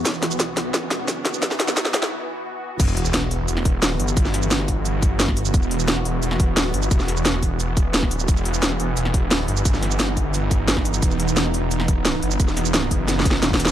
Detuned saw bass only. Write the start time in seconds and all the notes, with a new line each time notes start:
0.05 E1
0.22 E1
0.40 B1
0.91 E1
1.08 F#1
1.60 E1
1.94 B1
2.80 E1
3.31 E1
3.48 E1
4.00 G1
4.17 G1
5.54 E1
6.05 E1
6.22 E1
6.74 G1
6.91 E1
7.86 D#1
8.14 D1
8.28 E1
8.80 E1
8.97 E1
9.48 G1
9.65 G1
11.03 E1
11.54 E1
11.71 E1
12.23 G1
12.40 E1
12.91 F#1
13.43 E1